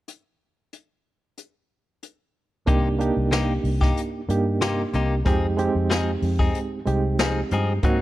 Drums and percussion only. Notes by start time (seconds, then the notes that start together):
0.08 closed hi-hat
0.73 closed hi-hat
1.38 closed hi-hat
2.03 closed hi-hat
2.67 kick, closed hi-hat
3.00 closed hi-hat
3.32 snare, closed hi-hat
3.64 open hi-hat
3.82 kick, snare
3.97 closed hi-hat
4.30 closed hi-hat
4.61 snare, closed hi-hat
4.93 closed hi-hat
5.26 kick, closed hi-hat
5.58 closed hi-hat
5.91 snare, closed hi-hat
6.22 open hi-hat
6.39 kick
6.55 closed hi-hat
6.87 closed hi-hat
7.19 snare, closed hi-hat
7.51 closed hi-hat
7.83 kick, closed hi-hat